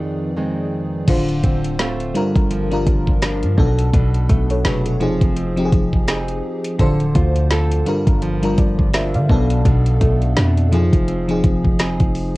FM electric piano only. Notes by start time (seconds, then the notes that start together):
Already playing: F3 C4 D#4 G#4 B4 D5
1.07 D3 D4 F4 C5
2.14 G3 D4 F4 A#4
2.71 G3 D4 F4 A#4
3.57 B2 B3 D4 A4
4.51 A4 C#5
4.66 G#4 B4
4.86 F#4 A4
5.00 F3 C4 D#4 G#4
5.56 F3 C4 D#4 G4
5.65 G#4
6.79 D3 D4 F4 C5
7.86 G3 D4 F4 A#4
8.43 G3 D4 F4 A#4
8.59 A#4 D5
8.95 C5 E5
9.15 D5 F5
9.29 B2 B3 D4 A4
10.72 F3 C4 D#4 G#4
11.28 F3 C4 D#4 G#4